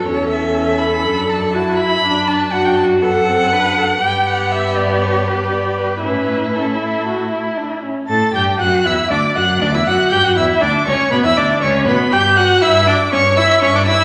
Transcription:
<<
  \new Staff \with { instrumentName = "Violin" } { \time 4/4 \key d \major \tempo 4 = 120 cis''8 e''4 b''4 a''4 b''8~ | b''8 a''8 fis''16 g''16 a''8 fis''2 | g''8 fis''8 e''8 d''8 cis''8 b'8 d''8 b'8 | b'4 a'2 r4 |
a'''8 g'''8 fis'''8 e'''8 d'''8 fis'''8 d'''16 e'''16 fis'''8 | g'''16 fis'''16 e'''8 d'''8 cis'''8 b''16 e'''16 d'''8 cis'''8 b''8 | g'''8 fis'''8 e'''8 d'''8 cis'''8 e'''8 cis'''16 d'''16 e'''8 | }
  \new Staff \with { instrumentName = "Violin" } { \time 4/4 \key d \major cis'2 d'4 e'4 | d'4 d'4 b8 c'8 d'4 | b2. b4 | cis'4 cis'8 e'8 fis'8 e'8 d'8 cis'8 |
a''8 g''8 fis''8 e''8 d''8 fis''8 d''16 e''16 fis''8 | g''16 fis''16 e''8 d''8 cis''8 b'16 e''16 d''8 cis''8 b'8 | g''8 fis''8 e''8 d''8 cis''8 e''8 cis''16 d''16 e''8 | }
  \new Staff \with { instrumentName = "Viola" } { \time 4/4 \key d \major a'2. fis'8 e'8 | d'4 fis'4 a'4 b'8 a'8 | g'1 | e'2.~ e'8 r8 |
a'8 g'8 fis'8 e'8 d'8 fis'8 d'16 e'16 fis'8 | g'16 fis'16 e'8 d'8 cis'8 b16 e'16 d'8 cis'8 b8 | g'8 fis'8 e'8 d'8 cis'8 e'8 cis'16 d'16 e'8 | }
  \new Staff \with { instrumentName = "Cello" } { \clef bass \time 4/4 \key d \major e,2 fis,2 | fis,1 | g,1 | a,2.~ a,8 r8 |
a,8 g,8 fis,8 e,8 d,8 fis,8 d,16 e,16 fis,8 | g,16 fis,16 e,8 d,8 cis,8 b,16 e,16 d,8 cis,8 b,8 | g,4 g,4 g,4 g,4 | }
>>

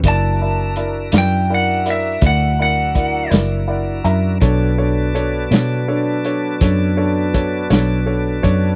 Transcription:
<<
  \new Staff \with { instrumentName = "Lead electric guitar" } { \time 12/8 \key fis \phrygian \tempo 4. = 55 a''4. g''8 fis''8 e''8 fis''8 fis''4 r4. | r1. | }
  \new Staff \with { instrumentName = "Upright piano" } { \time 12/8 \key fis \phrygian <e' ais' d''>8 <e' ais' d''>8 <e' ais' d''>8 <e' ais' d''>8 <e' ais' d''>8 <e' ais' d''>8 <e' ais' d''>8 <e' ais' d''>8 <e' ais' d''>8 <e' ais' d''>8 <e' ais' d'' fis''>8 <e' ais' e'' ais''>8 | <d' a' cis''>8 <d' a' cis''>8 <d' a' cis''>8 <d' a' cis''>8 <d' a' cis''>8 <d' a' cis''>8 <d' a' cis''>8 <d' a' cis''>8 <d' a' cis''>8 <d' a' cis''>8 <d' a' cis''>8 <d' a' cis''>8 | }
  \new Staff \with { instrumentName = "Tonewheel organ" } { \time 12/8 \key fis \phrygian <fis d' e' ais'>1. | <fis b d' a'>1. | }
  \new Staff \with { instrumentName = "Fingered electric bass" } { \clef bass \time 12/8 \key fis \phrygian fis,,4. fis,4. d,4. fis,,4 fis,8 | b,,4. b,4. fis,4. b,,4 fis,8 | }
  \new DrumStaff \with { instrumentName = "Drums" } \drummode { \time 12/8 <hh bd>4 hh8 <hh sn>4 hh8 <hh bd>4 <hh bd>8 <hh sn>4 hh8 | <hh bd>4 hh8 <hh sn>4 hh8 <hh bd sn>4 <hh bd>8 <hh sn>4 <hh bd>8 | }
>>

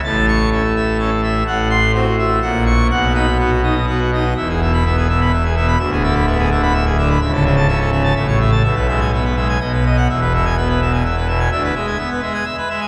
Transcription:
<<
  \new Staff \with { instrumentName = "Pipe organ" } { \time 3/4 \key e \major \tempo 4 = 126 a''8 cis'''8 a'8 e''8 a'8 e''8 | fis''8 c'''8 fis'8 e''8 fis''8 cis'''8 | fis''8 b''8 fis'8 dis''8 fis'8 dis''8 | e''16 gis'16 e''16 b''16 e''16 gis'16 e''16 b''16 e''16 gis'16 e''16 b''16 |
e''16 gis'16 e''16 b''16 e''16 gis'16 e''16 b''16 e''16 gis'16 e''16 b''16 | e''16 a'16 e''16 a''16 e''16 a'16 e''16 a''16 e''16 cis''16 e''16 a''16 | e''16 b'16 e''16 gis''16 e''16 b'16 e''16 gis''16 dis''16 b'16 dis''16 fis''16 | e''16 b'16 e''16 gis''16 e''16 b'16 e''16 gis''16 e''16 b'16 e''16 gis''16 |
e''16 b'16 e''16 gis''16 e''16 b'16 e''16 gis''16 e''16 b'16 e''16 gis''16 | }
  \new Staff \with { instrumentName = "Pipe organ" } { \clef bass \time 3/4 \key e \major << { a,4 cis'16 r8. cis'16 r8. | a,4 c'16 r8. ais,4 | b,8 dis'16 r16 b16 r16 dis'16 r16 b16 r16 dis'16 r16 | e,8 b,8 b8 b,8 r8 b,8 |
d,8 d8 b8 d8 r8 d8 | cis,8 cis8 cis'8 cis8 a,4 | b,8 gis8 b8 gis8 b,4 | e,8 b,8 b8 b,8 r8 b,8 |
d8 gis8 b8 gis8 r8 gis8 | } \\ { a,,2. | a,,2 ais,,4 | b,,2. | e,,2. |
d,,2. | cis,,2 a,,4 | b,,2 b,,4 | e,,2. |
d,8 r2 r8 | } >> }
>>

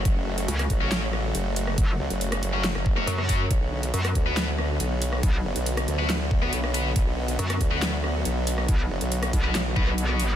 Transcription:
<<
  \new Staff \with { instrumentName = "Distorted electric guitar" } { \time 4/4 \key b \dorian \tempo 4 = 139 r4. r16 <fis cis' fis'>8 r4. r16 | r4. r16 <fis cis' fis'>16 r8. <fis cis' fis'>16 r8 <fis cis' fis'>16 r16 | r4. r16 <b fis' b'>8 r4. r16 | r4. r16 <b fis' b'>16 r8. <b fis' b'>16 r8 <b fis' b'>16 r16 |
r4. r16 <b fis' b'>8 r4. r16 | r4. r16 <b fis' b'>16 r8 <b fis' b'>16 r8 <b fis' b'>16 r8 | }
  \new Staff \with { instrumentName = "Supersaw synth" } { \clef bass \time 4/4 \key b \dorian <cis fis a fis'>1~ | <cis fis a fis'>1 | <d fis b fis'>1~ | <d fis b fis'>1~ |
<d fis b fis'>1~ | <d fis b fis'>1 | }
  \new Staff \with { instrumentName = "Wobble bass" } { \clef bass \time 4/4 \key b \dorian fis,,4 r8 a,,4. fis,,4 | r8 cis,16 fis,,8. fis,,8. fis,,8. r4 | b,,4 r8 d,4. b,,4 | r8 fis,,16 b,,8. d,4. b,,4 |
b,,4 r8 d,4. b,,4 | r8 fis,,16 b,,8. r8 b,,8 r4. | }
  \new Staff \with { instrumentName = "Wobble bass" } { \clef bass \time 4/4 \key b \dorian r4 cis,8 r2 r8 | fis,,8 r2 r8 fis,4 | r4 fis,8 r2 r8 | b,,8 r2. r8 |
r4 fis,8 r2 r8 | b,,8 r4 b,,8 r8 b,,4. | }
  \new DrumStaff \with { instrumentName = "Drums" } \drummode { \time 4/4 <hh bd>8. hh16 hh16 <hh ss>16 <hh bd>8 <hc hh sn>8 ss8 hh8 hho16 ss16 | <hh bd>8. hh16 hh16 <hh ss>16 hho8 <hc hh sn>16 ss16 bd16 ss16 hh16 ss16 <hho bd>8 | <hh bd>8. hh16 hh16 <hh ss>16 <hh bd>8 <hc hh sn>8 ss8 hh8 hho16 ss16 | <hh bd>8. hh16 hh16 <hh ss>16 hh8 <hc hh sn>8 bd16 ss16 hh16 ss16 hho8 |
<hh bd>8. hh16 hh16 <hh ss>16 <hh bd>8 <hc hh sn>8 ss8 hh8 hho16 ss16 | <hh bd>8. hh16 hh16 <hh ss>16 <hho bd>8 <hc hh sn>8 bd16 ss16 hh16 ss16 hho8 | }
>>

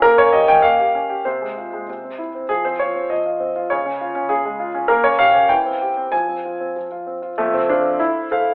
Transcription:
\new Staff \with { instrumentName = "Grand piano" } { \time 2/4 \key f \minor \tempo 4 = 98 << { bes'16 des''16 ees''16 g''16 f''4 | c''4. r8 | aes'16 c''16 des''8 ees''4 | des''4 aes'4 |
bes'16 des''16 f''8 g''4 | aes''4 r4 | \key f \major a16 c'16 d'8 e'4 | } \\ { bes16 des'16 g'16 des'16 bes16 g'16 des'16 g'16 | c16 aes16 f'16 aes16 c16 c'16 e'16 c'16 | f16 c'16 f'16 c'16 f16 f'16 c'16 f'16 | des16 des'16 f'16 des'16 des16 aes16 f'16 des'16 |
bes16 des'16 g'16 des'16 e16 c'16 g'16 c'16 | f16 c'16 f'16 c'16 f16 f'16 c'16 f'16 | f,8 <a' c'' f''>4 <a' c'' f''>8 | } >> }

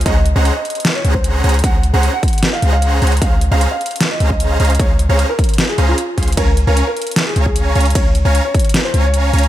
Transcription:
<<
  \new Staff \with { instrumentName = "Grand piano" } { \time 4/4 \key des \major \tempo 4 = 152 ees''8 r16 ees''16 r16 ees''8 r8 des''16 r16 c''4 r16 | ges''8 r16 ges''16 r16 ges''8 r8 f''16 r16 f''4 r16 | f''8 r16 f''16 r16 f''8 r8 ees''16 r16 ees''4 r16 | des''8 r16 des''16 r16 bes'8 r8 aes'16 r16 f'4 r16 |
bes'8 r16 bes'16 r16 bes'8 r8 aes'16 r16 aes'4 r16 | des''8 r16 des''16 r16 des''8 r8 c''16 r16 des''4 r16 | }
  \new Staff \with { instrumentName = "Supersaw synth" } { \time 4/4 \key des \major <des' aes' c'' ges'' bes''>16 r8 <des' aes' c'' ges'' bes''>8 r4 r16 <des' aes' c'' ges'' bes''>4 <des' aes' c'' ges'' bes''>16 r16 | <des' aes' c'' ges'' bes''>16 r8 <des' aes' c'' ges'' bes''>8 r4 r16 <des' aes' c'' ges'' bes''>4 <des' aes' c'' ges'' bes''>16 r16 | <des' aes' c'' f'' bes''>16 r8 <des' aes' c'' f'' bes''>8 r4 r16 <des' aes' c'' f'' bes''>4 <des' aes' c'' f'' bes''>16 r16 | <des' aes' c'' f'' bes''>16 r8 <des' aes' c'' f'' bes''>8 r4 r16 <des' aes' c'' f'' bes''>8 r8 <des' aes' c'' f'' c'''>16 r16 |
<des' des'' f'' aes'' bes''>16 r8 <des' des'' f'' aes'' bes''>8 r4 r16 <des' des'' f'' aes'' bes''>4 <des' des'' f'' aes'' bes''>16 r16 | <des' des'' f'' aes'' bes''>16 r8 <des' des'' f'' aes'' bes''>8 r4 r16 <des' des'' f'' aes'' bes''>4 <des' des'' f'' aes'' bes''>16 r16 | }
  \new Staff \with { instrumentName = "808-style bass" } { \clef bass \time 4/4 \key des \major des,8. des,8 r4 r16 des,4 des,8 | des,8. des,8 r4 r16 des,4 des,8 | des,8. des,8 r4 r16 des,4 des,8 | des,8. des,8 r4 r16 des,8 r8 des,8 |
des,8. des,8 r4 r16 des,4 des,8 | des,8. des,8 r4 r16 des,4 des,8 | }
  \new DrumStaff \with { instrumentName = "Drums" } \drummode { \time 4/4 <hh bd>8 hh8 hh8 hh32 hh32 hh32 hh32 <hh sn>8 hh16 bd16 hh8 hh32 hh32 hh32 hh32 | <hh bd>8 hh8 hh8 <hh bd>32 hh32 hh32 hh32 <hh sn>8 hh8 hh8 hh32 hh32 hh32 hh32 | <hh bd>8 hh8 hh8 hh32 hh32 hh32 hh32 <hh sn>8 hh16 bd16 hh8 hh32 hh32 hh32 hh32 | <hh bd>8 hh8 hh8 <hh bd>32 hh32 hh32 hh32 <hh sn>8 hh8 hh8 <hh bd>32 hh32 hh32 hh32 |
<hh bd cymr>8 hh8 hh8 hh32 hh32 hh32 hh32 <hh sn>8 hh16 bd16 hh8 hh32 hh32 hh32 hh32 | <hh bd cymr>8 hh8 hh8 <hh bd>32 hh32 hh32 hh32 <hh sn>8 hh8 hh8 hh32 hh32 hh16 | }
>>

